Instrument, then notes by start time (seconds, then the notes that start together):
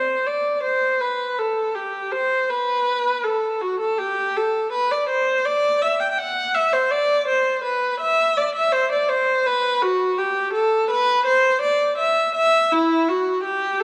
viola
Already playing: C5
0.27 D5
0.64 C5
1.01 B4
1.38 A4
1.75 G4
2.12 C5
2.50 B4
3.24 A4
3.61 F#4
3.80 A4
3.98 G4
4.37 A4
4.72 B4
4.91 D5
5.10 C5
5.45 D5
5.82 E5
6.00 G5
6.11 G5
6.18 F#5
6.55 E5
6.73 C5
6.91 D5
7.28 C5
7.64 B4
8.00 E5
8.37 D5
8.56 E5
8.73 C5
8.92 D5
9.09 C5
9.46 B4
9.82 F#4
10.18 G4
10.54 A4
10.91 B4
11.26 C5
11.62 D5
11.98 E5
12.35 E5
12.72 E4
13.09 F#4
13.44 G4